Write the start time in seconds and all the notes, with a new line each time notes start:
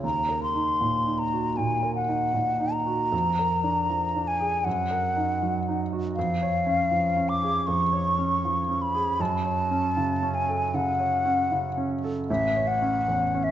0.03 D#2 A#5
0.29 A#4
0.43 C6
0.55 D#4
0.81 A#2
1.06 D#4
1.19 A#5
1.33 F#4
1.57 A#2 G#5
1.83 A#4
1.95 F#5
2.09 D#4
2.34 A#2
2.60 D#4
2.73 A#5
2.87 F#4
3.12 F2
3.39 A#4
3.64 D4
3.90 F3
4.16 D4
4.27 G#5
4.40 G#4
4.65 F#2 F#5
4.91 A#4
5.16 D#4
5.43 F#3
5.69 D#4
5.93 F#4
6.16 F2 F5
6.43 C#5
6.66 C#4
6.91 F3
7.16 C#4
7.29 D6
7.43 G#4
7.66 F2 C#6
7.93 C#5
8.19 C#4
8.45 F3
8.69 C#4
8.82 B5
8.95 G#4
9.20 F#2 A5
9.45 C#5
9.71 C#4
9.97 C#3
10.23 C#4
10.35 G#5
10.48 A4
10.74 C#3 F#5
11.00 C#5
11.25 C#4
11.52 C#3
11.77 C#4
12.04 A4
12.30 A1 E5
12.56 C#5
12.67 F#5
12.82 C#4
13.08 E2
13.35 C#4
13.44 E5